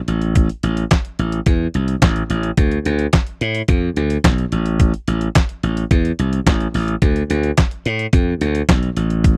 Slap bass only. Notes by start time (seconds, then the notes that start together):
0.08 A1
0.63 A1
1.19 A1
1.47 E2
1.75 C2
2.02 A1
2.30 A1
2.58 D2
2.86 D2
3.41 A2
3.69 F2
3.97 D2
4.24 B1
4.52 A1
5.08 A1
5.63 A1
5.91 E2
6.19 C2
6.47 A1
6.75 A1
7.02 D2
7.30 D2
7.86 A2
8.13 F2
8.41 D2
8.69 B1
8.97 A1